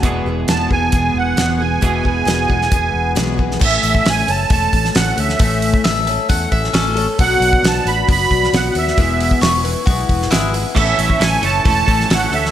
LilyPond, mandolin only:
\new Staff \with { instrumentName = "Mandolin" } { \time 4/4 \key a \major \tempo 4 = 134 r1 | r1 | r1 | r4 e''4 fis''8 e''8 <cis' a'>8. r16 |
r1 | r4 cis''4 fis'4 <gis e'>8 r8 | r1 | }